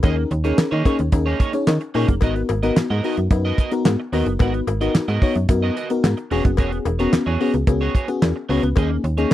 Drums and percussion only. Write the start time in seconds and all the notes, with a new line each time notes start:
0.03 kick, closed hi-hat, cowbell
0.31 closed hi-hat
0.44 closed hi-hat
0.58 snare, clap, closed hi-hat, cowbell
0.85 kick, closed hi-hat, cowbell
0.99 closed hi-hat
1.12 kick, closed hi-hat, cowbell
1.40 kick, closed hi-hat
1.53 closed hi-hat
1.67 snare, clap, closed hi-hat, cowbell
1.81 closed hi-hat
1.95 open hi-hat
2.08 kick, closed hi-hat
2.21 kick, closed hi-hat, cowbell
2.36 closed hi-hat
2.49 closed hi-hat, cowbell
2.63 closed hi-hat
2.76 snare, clap, closed hi-hat, cowbell
3.04 open hi-hat
3.17 closed hi-hat
3.31 kick, closed hi-hat, cowbell
3.58 kick, closed hi-hat
3.71 closed hi-hat
3.85 snare, clap, closed hi-hat, cowbell
4.13 open hi-hat
4.26 closed hi-hat
4.39 kick, closed hi-hat, cowbell
4.54 closed hi-hat
4.67 closed hi-hat, cowbell
4.81 closed hi-hat
4.95 snare, clap, closed hi-hat, cowbell
5.08 closed hi-hat
5.22 kick, open hi-hat
5.35 closed hi-hat
5.49 kick, closed hi-hat, cowbell
5.77 closed hi-hat
5.90 closed hi-hat
6.04 snare, clap, closed hi-hat, cowbell
6.17 closed hi-hat
6.31 open hi-hat
6.45 kick, closed hi-hat
6.57 kick, closed hi-hat, cowbell
6.72 closed hi-hat
6.85 closed hi-hat, cowbell
6.99 closed hi-hat
7.13 snare, clap, closed hi-hat, cowbell
7.41 open hi-hat
7.54 closed hi-hat
7.67 kick, closed hi-hat, cowbell
7.95 kick, closed hi-hat
8.08 closed hi-hat
8.22 snare, clap, closed hi-hat, cowbell
8.50 open hi-hat
8.63 closed hi-hat
8.76 kick, closed hi-hat, cowbell
9.04 closed hi-hat
9.18 closed hi-hat
9.31 cowbell